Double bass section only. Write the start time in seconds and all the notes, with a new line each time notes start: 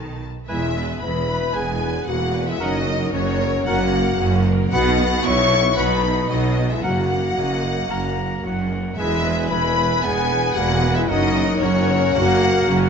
Already playing: B1
0.49 E1
1.02 E1
1.55 E1
2.08 E1
2.60 F#1
3.14 F#1
3.67 F#1
4.19 F#1
4.72 B1
5.25 B1
5.78 B1
6.29 B1
6.83 F#1
7.37 F#1
7.90 F#1
8.44 F#1
8.98 E1
9.51 E1
10.05 E1
10.56 E1
11.10 F#1
11.63 F#1
12.16 F#1
12.68 F#1